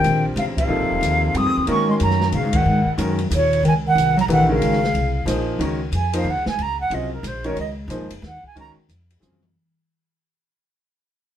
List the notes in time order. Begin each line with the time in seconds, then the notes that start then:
Already playing: D#3 G3 C4 D4 F4 A#4 G5
0.04 A#1, hi-hat pedal, ride
0.36 A1 C3 F5, ride
0.57 C3 F5, kick, ride
0.68 A#1 C3 F3 A#3 D#4 A4
0.80 F1
0.91 D#1
1.01 D#2, hi-hat pedal, ride
1.34 G2 C4 D#6, ride
1.46 F2
1.57 D#2
1.67 G#2 D#3 G#3 A#3 C#4 F#4 A#4 C#6, ride
1.89 G#3 C6
2.00 F#2 F#3 A#5, hi-hat pedal, ride
2.11 snare
2.21 snare
2.32 A#2 C#3 F5, ride
2.43 G#2
2.53 F#2 D#3 F#5, kick, ride
2.65 G#2
2.86 muted upright bass stroke
2.98 F#2 D#3 G#3 C#4 F#4 A#4, hi-hat pedal, ride
3.19 ride
3.31 D#2 A#2, hi-hat pedal, ride
3.35 C#5
3.53 ride
3.63 C#2 D#3, ride
3.68 G#5
3.85 D#3 F#5
3.95 C2, hi-hat pedal, ride
4.17 F#3 A#5, ride
4.28 A#1 D#3 E3 A3 D4 G4 B4, ride
4.33 F#5
4.49 C#3 D#3 G#3 C#4 F#4 A#4
4.54 F5
4.61 G#1, ride
4.73 snare
4.84 snare
4.94 C2, ride
5.25 A#1 F3 A#3 D#4 G#4 C5, hi-hat pedal, ride
5.59 C#2 D#3 G#3 C#4 F#4 A#4, ride
5.92 F2 G#5, hi-hat pedal, ride
6.13 F3 A#3 D#4 G#4 C5 F5, ride
6.24 D#2
6.30 F#5
6.35 C#2
6.46 G#1 G#5, snare
6.59 C#2 A#5, ride
6.81 F#5
6.90 C2 C#3 F#3 C4 F4 G#4 D#5, ride
7.13 A#4
7.23 A#1, hi-hat pedal, ride
7.27 C5
7.44 D#3 G#3 C#4 F#4 A#4 C#5, ride
7.56 C#2, ride
7.60 D#5
7.88 A#1 F3 A#3 D#4 G#4 C5, hi-hat pedal, ride
8.00 G#1
8.10 F#1, ride
8.22 D#2, snare
8.27 F#5
8.43 G#5, muted upright bass stroke, kick
8.55 C#2 D#3 G#3 C#4 F#4 A#4, ride
8.60 A#5
8.77 muted upright bass stroke
8.89 F2, hi-hat pedal, ride
9.10 ride
9.20 F#2 C#3 F#3 C4 F4 G#4, hi-hat pedal, high tom
9.33 mid tom
9.43 mid tom